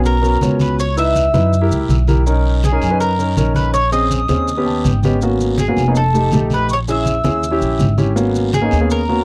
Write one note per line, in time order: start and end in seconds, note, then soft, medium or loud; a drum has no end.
0.00 0.37 B1 medium
0.00 0.14 B3 medium
0.00 0.14 C#4 medium
0.00 0.14 F#4 medium
0.00 0.14 C#5 medium
0.00 long guiro medium
0.04 0.61 A#4 medium
0.04 0.56 A#5 medium
0.04 high conga soft
0.04 maracas medium
0.22 0.35 B3 medium
0.22 0.35 C#4 medium
0.22 0.36 F#4 medium
0.22 0.36 A#4 medium
0.22 high conga soft
0.22 maracas medium
0.41 1.28 C#2 medium
0.41 0.78 B3 medium
0.41 0.79 C#4 medium
0.41 0.79 F#4 medium
0.41 0.79 C#5 medium
0.41 high conga medium
0.41 short guiro medium
0.41 maracas medium
0.59 0.79 B4 medium
0.59 0.78 B5 medium
0.59 high conga medium
0.59 short guiro medium
0.59 maracas soft
0.79 0.98 C#5 medium
0.79 0.96 C#6 medium
0.79 high conga soft
0.79 long guiro medium
0.79 maracas medium
0.97 1.23 D#4 medium
0.97 1.23 E4 medium
0.97 1.23 B4 medium
0.97 2.04 E5 medium
0.97 2.04 E6 medium
0.97 high conga soft
0.97 maracas medium
1.15 high conga medium
1.15 short guiro medium
1.15 maracas medium
1.33 1.68 F#2 medium
1.33 1.52 D#4 medium
1.33 1.52 E4 medium
1.33 1.52 B4 medium
1.33 high conga medium
1.33 short guiro medium
1.33 maracas soft
1.53 high conga soft
1.53 long guiro medium
1.53 maracas medium
1.61 1.94 E4 medium
1.61 1.94 G4 medium
1.61 1.94 A#4 medium
1.71 1.88 C#2 medium
1.71 high conga soft
1.71 maracas medium
1.89 2.75 B1 medium
1.89 high conga medium
1.89 short guiro medium
1.89 maracas medium
2.08 2.21 E4 medium
2.08 2.21 G4 medium
2.08 2.21 A#4 medium
2.08 high conga medium
2.08 short guiro medium
2.08 maracas soft
2.26 2.59 C#4 medium
2.26 2.59 D#4 medium
2.26 2.59 A#4 medium
2.26 high conga soft
2.26 long guiro medium
2.26 maracas medium
2.46 high conga soft
2.63 2.98 G#4 medium
2.63 2.99 G#5 medium
2.63 high conga medium
2.63 short guiro medium
2.63 maracas medium
2.72 2.85 C#4 medium
2.72 2.85 D#4 medium
2.72 2.85 A#4 medium
2.82 3.33 F#2 medium
2.82 short guiro medium
2.82 maracas soft
2.90 3.10 C#4 medium
2.90 3.10 D#4 medium
2.90 3.10 B4 medium
3.00 3.52 A#4 medium
3.00 3.53 A#5 medium
3.00 high conga soft
3.00 long guiro medium
3.00 maracas medium
3.19 3.31 C#4 medium
3.19 3.32 D#4 medium
3.19 3.32 A#4 medium
3.19 high conga soft
3.19 maracas medium
3.37 4.23 A#1 medium
3.37 3.74 C#4 medium
3.37 3.74 D#4 medium
3.37 3.74 A#4 medium
3.37 high conga medium
3.37 short guiro medium
3.37 maracas medium
3.55 3.73 B4 medium
3.55 3.73 B5 medium
3.55 high conga medium
3.55 short guiro medium
3.55 maracas soft
3.73 3.92 C#5 loud
3.73 3.91 C#6 medium
3.73 high conga soft
3.73 long guiro medium
3.73 maracas medium
3.92 4.18 C4 medium
3.92 4.18 C#4 medium
3.92 4.18 G#4 medium
3.92 4.99 D#5 medium
3.92 4.99 D#6 medium
3.92 high conga soft
3.92 maracas medium
4.11 high conga medium
4.11 short guiro medium
4.11 maracas medium
4.28 4.81 D#2 medium
4.28 4.48 C4 medium
4.28 4.48 C#4 medium
4.28 4.48 G#4 medium
4.28 high conga medium
4.28 short guiro medium
4.28 maracas soft
4.47 high conga soft
4.47 long guiro medium
4.47 maracas medium
4.57 4.89 B3 medium
4.57 4.90 C#4 medium
4.57 4.90 G4 medium
4.66 4.83 A5 medium
4.66 high conga soft
4.84 5.71 G#1 medium
4.84 5.02 G5 medium
4.84 high conga medium
4.84 short guiro medium
4.84 maracas medium
5.03 5.17 B3 medium
5.03 5.17 C#4 medium
5.03 5.17 G4 medium
5.03 5.21 D#5 medium
5.03 high conga medium
5.03 short guiro medium
5.03 maracas soft
5.22 5.54 A#3 medium
5.22 5.54 B3 medium
5.22 5.55 C#4 medium
5.22 5.55 F#4 medium
5.22 long guiro medium
5.22 maracas medium
5.39 high conga soft
5.39 maracas medium
5.58 5.96 G#4 medium
5.58 5.93 G#5 medium
5.58 high conga medium
5.58 short guiro medium
5.58 maracas medium
5.68 5.81 A#3 medium
5.68 5.81 B3 medium
5.68 5.81 C#4 medium
5.68 5.81 F#4 medium
5.76 6.28 F1 medium
5.76 short guiro medium
5.76 maracas soft
5.88 5.96 A#3 medium
5.88 5.96 B3 medium
5.88 5.96 C#4 medium
5.88 5.96 D#4 medium
5.95 6.53 A4 medium
5.95 6.47 A5 medium
5.95 high conga soft
5.95 long guiro medium
5.95 maracas medium
6.14 6.27 A3 medium
6.14 6.27 D#4 medium
6.14 6.27 G4 medium
6.14 high conga soft
6.14 maracas medium
6.31 7.18 A#1 medium
6.31 6.69 A3 medium
6.31 6.69 D#4 medium
6.31 6.70 G4 medium
6.31 high conga medium
6.31 short guiro medium
6.31 maracas medium
6.50 6.69 B5 medium
6.50 high conga medium
6.50 short guiro medium
6.50 maracas soft
6.54 6.71 B4 medium
6.69 6.77 C#6 medium
6.69 high conga soft
6.69 long guiro medium
6.69 maracas medium
6.73 6.78 C#5 loud
6.88 7.14 C#4 medium
6.88 7.14 E4 medium
6.88 7.14 G#4 medium
6.88 7.96 E5 medium
6.88 7.96 E6 medium
6.88 high conga soft
6.88 maracas medium
7.05 high conga medium
7.05 short guiro medium
7.05 maracas medium
7.24 7.59 D#2 medium
7.24 7.43 C#4 medium
7.24 7.43 E4 medium
7.24 7.43 G#4 medium
7.24 high conga medium
7.24 short guiro medium
7.24 maracas soft
7.42 high conga soft
7.42 long guiro medium
7.42 maracas medium
7.51 7.84 C#4 medium
7.51 7.84 E4 medium
7.51 7.84 G4 medium
7.61 7.78 A#1 medium
7.61 high conga soft
7.61 maracas medium
7.79 8.66 G#1 medium
7.79 high conga medium
7.79 short guiro medium
7.79 maracas medium
7.98 8.11 C#4 medium
7.98 8.11 E4 medium
7.98 8.11 G4 medium
7.98 high conga medium
7.98 short guiro medium
7.98 maracas soft
8.16 8.48 A#3 medium
8.16 8.48 B3 medium
8.16 8.48 C#4 medium
8.16 8.49 F#4 medium
8.16 high conga soft
8.16 long guiro medium
8.16 maracas medium
8.35 high conga soft
8.35 maracas medium
8.53 8.88 G#4 medium
8.53 8.88 G#5 medium
8.53 high conga medium
8.53 short guiro medium
8.53 maracas medium
8.61 8.75 A#3 medium
8.61 8.75 B3 medium
8.61 8.75 C#4 medium
8.61 8.75 D#4 medium
8.71 9.24 D#2 medium
8.71 short guiro medium
8.71 maracas soft
8.80 9.00 A#3 medium
8.80 9.00 B3 medium
8.80 9.00 C#4 medium
8.80 9.00 G#4 medium
8.90 9.24 A#4 medium
8.90 9.24 A#5 medium
8.90 high conga soft
8.90 long guiro medium
8.90 maracas medium
9.09 9.22 A#3 medium
9.09 9.22 B3 medium
9.09 9.22 C#4 medium
9.09 9.22 F#4 medium
9.09 high conga soft